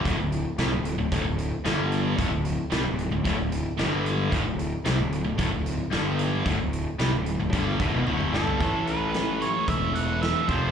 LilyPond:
<<
  \new Staff \with { instrumentName = "Lead electric guitar" } { \time 4/4 \key a \dorian \tempo 4 = 112 r1 | r1 | r1 | r2. r8 a'8~ |
a'8 b'4 cis''8 e''8 fis''8 e''8 c''8 | }
  \new Staff \with { instrumentName = "Steel-string acoustic guitar" } { \time 4/4 \key a \dorian r1 | r1 | r1 | r1 |
<a, e a cis' e' a'>4 <a cis' e' a'>8 <a cis' e' a'>8 <a, e a cis' e' a'>4 <a cis' e' a'>8 <c' f' a'>8 | }
  \new Staff \with { instrumentName = "Distorted electric guitar" } { \clef bass \time 4/4 \key a \dorian <d, a,>16 <d, a,>8 r16 <c g>16 <d, a,>8 <d, a,>16 <d, a,>16 <d, a,>8 r16 <g, d g>4 | <d, a,>16 <d, a,>8 r16 <c g>16 <d, a,>8 <d, a,>16 <d, a,>16 <d, a,>8 r16 <g, d g>4 | <d, a,>16 <d, a,>8 r16 <c g>16 <d, a,>8 <d, a,>16 <d, a,>16 <d, a,>8 r16 <g, d g>4 | <d, a,>16 <d, a,>8 r16 <c g>16 <d, a,>8 <d, a,>16 <g, d g>8 <d, a,>16 <e, b,>16 <d, a, d>8 <g, d g>8 |
<a, e a>4. <a, e a>4. <a, e a>8 <f, c f>8 | }
  \new Staff \with { instrumentName = "Overdriven electric guitar" } { \clef bass \time 4/4 \key a \dorian <d, a,>16 <d, a,>8 r16 <c g>16 <d, a,>8 <d, a,>16 <d, a,>16 <d, a,>8 r16 <g, d g>4 | <d, a,>16 <d, a,>8 r16 <c g>16 <d, a,>8 <d, a,>16 <d, a,>16 <d, a,>8 r16 <g, d g>4 | <d, a,>16 <d, a,>8 r16 <c g>16 <d, a,>8 <d, a,>16 <d, a,>16 <d, a,>8 r16 <g, d g>4 | <d, a,>16 <d, a,>8 r16 <c g>16 <d, a,>8 <d, a,>16 <g, d g>8 <d, a,>16 <e, b,>16 <d, a, d>8 <g, d g>8 |
<a, e a>2.~ <a, e a>8 <f, c f>8 | }
  \new Staff \with { instrumentName = "Fingered electric bass" } { \clef bass \time 4/4 \key a \dorian d,,16 d,,8 r16 c,16 d,,8 d,,16 d,,16 d,,8 r16 g,,4 | d,,16 d,,8 r16 c,16 d,,8 d,,16 d,,16 d,,8 r16 g,,4 | d,,16 d,,8 r16 c,16 d,,8 d,,16 d,,16 d,,8 r16 g,,4 | d,,16 d,,8 r16 c,16 d,,8 d,,16 g,,8 d,,16 e,,16 d,,8 g,,8 |
a,,2 e,,4. f,,8 | }
  \new DrumStaff \with { instrumentName = "Drums" } \drummode { \time 4/4 <hh bd>8 hh8 <hh sn>8 hh8 <hh bd>8 hh8 <hh sn>8 hh8 | <hh bd>8 hh8 <hh sn>8 hh8 <hh bd>8 hh8 <hh sn>8 hh8 | <hh bd>8 hh8 <hh sn>8 hh8 <hh bd>8 hh8 <hh sn>8 hh8 | <hh bd>8 hh8 <hh sn>8 hh8 <hh bd>8 <hh bd>8 tommh16 toml16 sn16 tomfh16 |
<hh bd>8 hh8 <hh sn>8 hh8 <hh bd>8 hh8 <hh sn>8 <hh bd>8 | }
>>